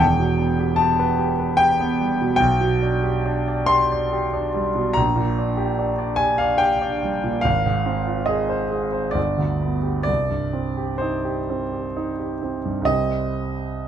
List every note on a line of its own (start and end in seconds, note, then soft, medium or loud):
0.00 2.35 E1 medium
0.00 2.34 E2 medium
0.00 0.79 G5 loud
0.19 0.52 B2 medium
0.39 0.72 B3 soft
0.60 0.92 G4 medium
0.76 1.12 B3 medium
0.76 1.58 A5 loud
0.99 1.32 B4 medium
1.19 1.52 G4 medium
1.39 1.72 B4 medium
1.57 1.92 G4 medium
1.57 2.35 G5 loud
1.80 2.12 B3 medium
2.00 2.32 G3 medium
2.21 2.41 B2 medium
2.36 4.93 B1 medium
2.36 3.69 G5 loud
2.61 2.95 B2 medium
2.82 3.17 D4 medium
3.03 3.40 G4 medium
3.26 3.62 D4 medium
3.48 3.84 D5 medium
3.66 4.05 G4 medium
3.66 4.95 C6 loud
3.92 4.26 D5 medium
4.13 4.47 G4 medium
4.34 4.68 D4 medium
4.54 4.88 G3 medium
4.75 4.96 B2 medium
4.93 7.41 A#1 medium
4.93 6.19 A#5 loud
5.16 5.49 A#2 medium
5.39 5.71 D4 medium
5.57 5.91 G4 medium
5.79 6.12 D4 medium
5.98 6.32 D5 medium
6.16 6.53 G4 medium
6.16 6.39 G#5 loud
6.38 6.74 D5 medium
6.38 6.60 F5 loud
6.58 6.95 G4 medium
6.58 7.43 G5 loud
6.82 7.16 D4 medium
7.03 7.37 G3 medium
7.24 7.45 A#2 medium
7.41 9.12 G#1 medium
7.41 8.27 F5 loud
7.66 8.00 G#2 medium
7.86 8.20 C4 medium
8.07 8.42 F4 medium
8.26 8.63 G#4 medium
8.26 9.14 D#5 medium
8.49 8.84 C5 medium
8.71 9.07 G#4 soft
8.92 9.15 C5 medium
9.11 10.04 G1 medium
9.11 10.02 D5 medium
9.38 9.75 D2 medium
9.61 9.98 B3 soft
9.83 10.07 G4 soft
10.03 12.80 C2 medium
10.03 10.99 D5 loud
10.30 10.68 G2 soft
10.53 10.91 C4 soft
10.77 11.15 G4 medium
10.98 11.39 D#4 soft
10.98 12.40 C5 medium
11.25 11.62 G4 medium
11.50 11.86 C4 soft
11.73 12.10 G4 soft
11.97 12.33 D#4 medium
12.19 12.56 G4 soft
12.43 12.79 C4 soft
12.65 12.88 G2 soft
12.82 13.88 C2 medium
12.82 13.88 G3 soft
12.82 13.88 C4 soft
12.82 13.88 D#5 loud
12.87 13.88 G4 soft